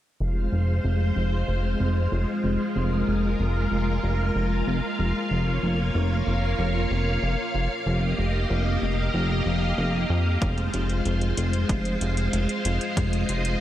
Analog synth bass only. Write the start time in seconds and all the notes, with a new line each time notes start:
0.20 F1
0.52 F1
0.84 F1
1.16 F1
1.48 F1
1.80 F1
2.12 F1
2.44 F1
2.76 F1
3.08 F1
3.40 F1
3.72 F1
4.03 F1
4.35 F1
4.67 F1
4.99 F1
5.31 F1
5.63 F1
5.95 F1
6.27 F1
6.59 F1
6.91 F1
7.23 F1
7.54 F1
7.86 F1
8.18 F1
8.50 F1
8.82 F1
9.14 F1
9.46 F1
9.78 F1
10.10 F2
10.42 F1
10.74 F1
11.06 F1
11.37 F1
11.69 F1
12.01 F1
12.33 F1
12.65 F1
12.97 F1
13.29 F1